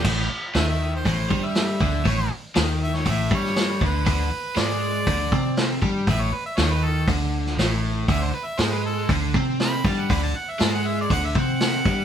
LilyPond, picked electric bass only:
\new Staff \with { instrumentName = "Picked electric bass" } { \clef bass \time 4/4 \key d \major \tempo 4 = 119 a,,8 r8 dis,4 a,,8 g,4 d,8 | a,,8 r8 dis,4 a,,8 g,4 d,8 | d,8 r8 gis,4 d,8 bis,4 g,8 | a,,8 r8 dis,4 d,4 a,,4 |
d,8 r8 gis,4 d,8 c4 g,8 | d,8 r8 gis,4 d,8 c4 g,8 | }